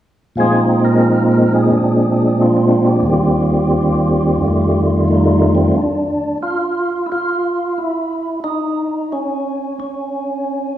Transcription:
0.36 1.70 A#2 soft
0.36 1.70 F3 soft
0.36 1.71 G#3 soft
0.36 1.71 C4 soft
0.40 1.73 D#4 soft
0.40 0.60 G#4 medium
0.85 1.53 A#4 medium
1.53 2.43 G#4 medium
1.71 3.06 A#2 soft
1.71 3.06 F3 soft
1.71 3.06 G#3 soft
1.71 3.06 C4 soft
1.71 3.06 D4 soft
2.41 2.87 F4 medium
2.87 4.83 G4 medium
3.01 4.38 D#2 soft
3.01 4.37 D#3 soft
3.07 4.40 G3 soft
3.07 4.42 C4 soft
3.12 4.43 F4 soft
4.36 5.72 F2 soft
4.36 5.73 D#3 soft
4.42 5.75 G3 soft
4.42 5.76 A3 soft
4.47 5.78 F4 soft
5.08 5.55 D#4 medium
5.55 5.76 C4 medium
5.76 6.38 D4 medium
6.43 7.06 F4 medium
7.06 7.10 E4 medium
7.12 7.79 F4 medium
7.78 8.40 E4 medium
8.44 9.13 D#4 medium
9.12 9.78 C#4 medium
9.80 10.78 C#4 medium

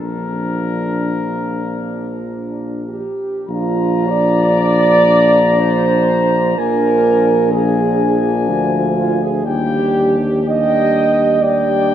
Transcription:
0.00 3.04 A#1 soft
0.00 3.04 F3 soft
0.00 2.83 D4 soft
0.00 2.25 A#4 medium
2.88 3.44 G4 medium
3.48 6.54 A#1 medium
3.48 6.54 F3 medium
3.48 6.54 D4 medium
3.48 4.07 F4 medium
3.48 6.60 A#5 medium
4.08 5.60 D5 loud
5.59 6.57 C5 medium
6.58 8.51 A#1 medium
6.58 7.51 F3 medium
6.58 7.51 D4 medium
6.58 7.51 A#4 loud
6.58 7.52 G#5 medium
7.52 9.41 F3 medium
7.52 9.27 D4 medium
7.52 8.48 G#4 medium
7.52 9.41 G#5 medium
8.50 9.47 D2 medium
8.98 9.20 F4 medium
9.21 9.45 G#4 medium
9.44 11.95 D#2 medium
9.44 10.18 G3 medium
9.44 10.45 D4 medium
9.44 10.47 G4 loud
9.44 10.18 G5 medium
10.46 11.37 G3 medium
10.46 11.40 D4 medium
10.46 11.42 D#5 loud
10.46 11.39 G5 medium
11.41 11.95 G3 medium
11.41 11.95 D4 medium
11.41 11.95 D5 medium
11.41 11.95 G5 medium

